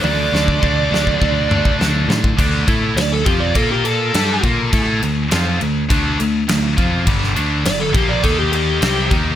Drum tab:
CC |----------------|x-x-x-x-x-x-x-x-|x-x-x-x-x-x-x-x-|x-x-x-x-x-x-x-x-|
SD |--o---o-----o-o-|----o-------o---|----o-------o---|-o--o-------o---|
T1 |o---------------|----------------|----------------|----------------|
T2 |----------o-----|----------------|----------------|----------------|
BD |---oo--oo--o---o|o-o---o-o-----o-|o-------o-----o-|o-----o-o-----o-|